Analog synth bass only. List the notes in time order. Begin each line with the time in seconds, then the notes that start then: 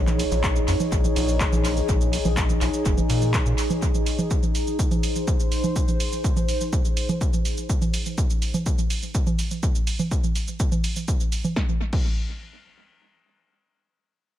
Already playing: A#1
0.31 A#1
0.68 F2
0.92 A#1
1.16 A#1
1.52 A#1
1.89 A#1
2.25 A#1
2.61 A#1
2.86 F1
3.10 A#2
3.46 A#2